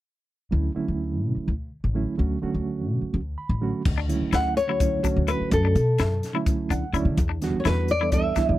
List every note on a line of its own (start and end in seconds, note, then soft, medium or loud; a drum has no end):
0.51 0.73 D2 medium
0.51 0.71 D3 medium
0.51 0.71 F#3 medium
0.51 0.71 A3 medium
0.51 0.71 C#4 medium
0.51 0.72 E4 medium
0.74 1.52 D3 medium
0.74 1.53 F#3 medium
0.74 1.53 A3 medium
0.74 1.53 C#4 medium
0.74 1.53 E4 medium
0.74 muted upright bass stroke soft
0.88 1.23 D2 medium
1.23 1.34 B2 medium
1.36 muted upright bass stroke soft
1.48 1.68 D2 medium
1.84 2.04 A1 medium
1.94 2.14 D3 medium
1.94 2.14 F#3 medium
1.94 2.14 A3 medium
1.94 2.14 C#4 medium
1.94 2.15 E4 medium
2.18 2.40 D2 medium
2.18 2.37 D3 medium
2.18 2.38 F#3 medium
2.18 2.38 A3 medium
2.18 2.38 C#4 medium
2.18 2.38 F#4 medium
2.41 3.19 D3 medium
2.41 3.19 F#3 medium
2.41 3.19 A3 medium
2.41 3.20 C#4 medium
2.41 3.20 F#4 medium
2.41 muted upright bass stroke soft
2.54 2.90 D2 medium
2.90 3.00 B2 medium
3.01 muted upright bass stroke soft
3.14 3.34 D2 medium
3.38 3.82 B5 medium
3.49 3.70 A1 medium
3.61 3.81 D3 medium
3.61 3.81 F#3 medium
3.61 3.81 A3 medium
3.61 3.81 C#4 medium
3.61 3.81 F#4 medium
3.85 4.09 D2 medium
3.85 kick medium
3.85 crash medium
3.98 4.14 D4 medium
4.08 4.19 C#2 medium
4.08 4.56 D3 medium
4.08 4.57 F#3 medium
4.08 4.57 A3 medium
4.08 4.57 C#4 medium
4.08 4.57 E4 medium
4.08 closed hi-hat medium
4.21 muted upright bass stroke soft
4.33 4.94 D2 medium
4.33 4.50 E4 medium
4.33 4.56 F#5 medium
4.33 snare medium
4.33 closed hi-hat medium
4.57 5.30 C#5 medium
4.57 closed hi-hat medium
4.67 4.77 D3 medium
4.67 4.78 F#3 medium
4.67 4.78 A3 soft
4.67 4.78 C#4 medium
4.67 4.86 E4 medium
4.67 4.79 F#4 medium
4.80 4.99 D3 medium
4.80 4.99 F#3 medium
4.80 5.00 A3 medium
4.80 5.00 C#4 medium
4.80 5.00 E4 medium
4.80 kick loud
4.80 closed hi-hat medium
5.03 5.80 D3 medium
5.03 5.80 F#3 medium
5.03 5.81 A3 medium
5.03 5.80 C#4 medium
5.03 5.21 D4 medium
5.03 5.81 F#4 medium
5.03 muted upright bass stroke soft
5.03 kick medium
5.03 closed hi-hat medium
5.16 5.37 D2 medium
5.28 5.45 E4 medium
5.28 5.52 B4 medium
5.28 closed hi-hat medium
5.40 muted upright bass stroke soft
5.51 5.72 F#2 loud
5.51 6.43 A4 medium
5.51 kick medium
5.51 closed hi-hat medium
5.65 5.81 D4 medium
5.75 5.96 B2 medium
5.75 closed hi-hat medium
5.98 6.20 F#2 medium
5.98 6.16 E4 medium
5.98 snare medium
5.98 closed hi-hat medium
6.23 snare soft
6.23 closed hi-hat medium
6.34 6.82 D3 medium
6.34 6.83 F#3 medium
6.34 6.83 A3 medium
6.34 6.83 C#4 medium
6.34 6.51 E4 medium
6.34 6.83 E4 medium
6.46 kick medium
6.46 closed hi-hat medium
6.70 6.91 D2 medium
6.70 6.87 D4 medium
6.70 6.93 F#5 medium
6.70 kick medium
6.70 closed hi-hat medium
6.93 7.07 D2 medium
6.93 7.17 D3 medium
6.93 7.17 F#3 medium
6.93 7.18 A3 medium
6.93 7.18 C#4 medium
6.93 7.11 E4 medium
6.93 7.18 E4 medium
6.93 7.16 D5 medium
6.93 closed hi-hat medium
7.05 7.16 D3 medium
7.17 7.42 E2 loud
7.17 kick medium
7.17 closed hi-hat medium
7.29 7.46 D4 medium
7.42 7.52 D2 medium
7.42 7.89 E3 medium
7.42 7.90 G3 medium
7.42 7.90 B3 medium
7.42 7.90 D4 medium
7.42 7.90 F#4 medium
7.42 snare soft
7.42 closed hi-hat medium
7.53 muted upright bass stroke soft
7.60 7.65 C#5 medium
7.65 8.27 E2 medium
7.65 7.82 E4 medium
7.65 7.90 B4 medium
7.65 snare medium
7.65 closed hi-hat medium
7.88 8.13 D5 medium
7.88 closed hi-hat medium
8.00 8.10 E3 medium
8.00 8.10 G3 medium
8.00 8.10 B3 medium
8.00 8.10 D4 medium
8.00 8.18 E4 medium
8.00 8.11 A4 medium
8.12 8.31 E3 medium
8.12 8.32 G3 medium
8.12 8.32 B3 medium
8.12 8.32 D4 medium
8.12 8.32 A4 medium
8.12 8.59 E5 medium
8.12 kick medium
8.12 closed hi-hat medium
8.36 8.59 E3 medium
8.36 8.59 G3 medium
8.36 8.59 B3 medium
8.36 8.53 D4 medium
8.36 8.59 D4 medium
8.36 8.59 E4 medium
8.36 muted upright bass stroke soft
8.36 kick medium
8.36 snare soft
8.36 closed hi-hat soft
8.49 8.59 E2 medium